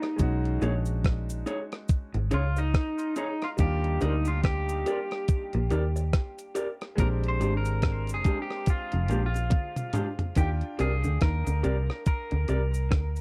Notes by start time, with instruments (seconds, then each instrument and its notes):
Already playing: grand piano A#3 F4 G4 D5, clean electric guitar D#4
0.02 muted clean electric guitar stroke, cross-stick, closed hi-hat
0.16 fingered electric bass B1, clean electric guitar B2, grand piano G#3 C#4 D#4, kick, closed hi-hat, cabasa
0.22 grand piano F#4
0.45 closed hi-hat
0.61 fingered electric bass A#1, clean electric guitar A#2 D#4 G#4 C#5, closed hi-hat, cabasa
0.67 clean electric guitar D4
0.85 cabasa
1.04 kick, cross-stick, closed hi-hat
1.30 closed hi-hat, cabasa
1.46 clean electric guitar D#4 G#4 C#5, closed hi-hat, cabasa
1.72 cross-stick, closed hi-hat
1.88 kick, closed hi-hat, cabasa
2.14 fingered electric bass G#1, clean electric guitar G#2, closed hi-hat
2.31 fingered electric bass C#2, clean electric guitar C#3 D#4 F4 G#4 C#5, closed hi-hat, cabasa
2.56 clean electric guitar D#4, muted clean electric guitar stroke, cabasa
2.74 kick, cross-stick, closed hi-hat
2.98 closed hi-hat, cabasa
3.16 clean electric guitar D#4 G#4 C#5, closed hi-hat, cabasa
3.42 clean electric guitar F4, cross-stick, closed hi-hat
3.57 fingered electric bass D#2, clean electric guitar D#3 G4, grand piano G3 A#3 D4, kick, closed hi-hat, cabasa
3.63 grand piano F4
3.84 closed hi-hat
4.01 fingered electric bass D2, clean electric guitar D3 D#4 G4 A#4 D5, closed hi-hat, cabasa
4.25 clean electric guitar F4, cabasa
4.44 clean electric guitar G4, kick, cross-stick, closed hi-hat
4.69 closed hi-hat, cabasa
4.86 clean electric guitar G4 A#4 D5, closed hi-hat, cabasa
5.11 cross-stick, closed hi-hat
5.28 kick, closed hi-hat, cabasa
5.53 fingered electric bass A#1, clean electric guitar A#2, closed hi-hat
5.70 fingered electric bass D#2, clean electric guitar D#3 G4 A#4 D5, closed hi-hat, cabasa
5.96 muted clean electric guitar stroke, cabasa
6.13 kick, cross-stick, closed hi-hat
6.38 closed hi-hat, cabasa
6.55 clean electric guitar G4 A#4 D5, closed hi-hat, cabasa
6.81 cross-stick, closed hi-hat
6.95 fingered electric bass A#1, clean electric guitar A#2, grand piano G#3 C4, kick, closed hi-hat, cabasa
7.00 grand piano D4 G4, clean electric guitar A#4
7.24 closed hi-hat
7.28 clean electric guitar C5
7.40 fingered electric bass G#1, clean electric guitar G#2 G#3 D4 G4, closed hi-hat, cabasa
7.57 clean electric guitar A#4
7.65 closed hi-hat, cabasa
7.82 kick, cross-stick, closed hi-hat
8.07 closed hi-hat, cabasa
8.14 clean electric guitar G#4
8.24 clean electric guitar G#3 D4 G4, kick, closed hi-hat, cabasa
8.42 clean electric guitar G4
8.51 cross-stick
8.66 clean electric guitar F4, kick, closed hi-hat, cabasa
8.92 fingered electric bass F1, clean electric guitar F2, closed hi-hat
9.08 fingered electric bass A#1, clean electric guitar A#2 G#3 D4 G4, closed hi-hat, cabasa
9.26 clean electric guitar F4
9.34 muted clean electric guitar stroke, closed hi-hat, cabasa
9.50 kick, closed hi-hat, high tom
9.76 closed hi-hat, mid tom, cabasa
9.93 clean electric guitar G#3 D4 G4, closed hi-hat, mid tom, cabasa
10.19 closed hi-hat, floor tom
10.35 fingered electric bass D#2, clean electric guitar D#3 G4, grand piano D4 F4, kick, closed hi-hat, cabasa
10.41 grand piano G5
10.61 closed hi-hat
10.79 fingered electric bass C2, clean electric guitar C3 G4 G#4 A#4 D5, closed hi-hat, cabasa
11.04 fingered electric bass D2, clean electric guitar D3, cabasa
11.21 fingered electric bass D#2, clean electric guitar D#3 A#4, kick, cross-stick, closed hi-hat
11.47 fingered electric bass D2, clean electric guitar D3, closed hi-hat, cabasa
11.63 fingered electric bass C2, clean electric guitar C3 G4 A#4 D5, closed hi-hat, cabasa
11.90 cross-stick
12.06 clean electric guitar A#4, kick, closed hi-hat, cabasa
12.31 fingered electric bass D2, clean electric guitar D3, closed hi-hat
12.48 fingered electric bass C2, clean electric guitar C3 G4 A#4 D5, closed hi-hat, cabasa
12.74 cabasa
12.91 fingered electric bass D2, clean electric guitar D3, kick, cross-stick, closed hi-hat
13.16 closed hi-hat, cabasa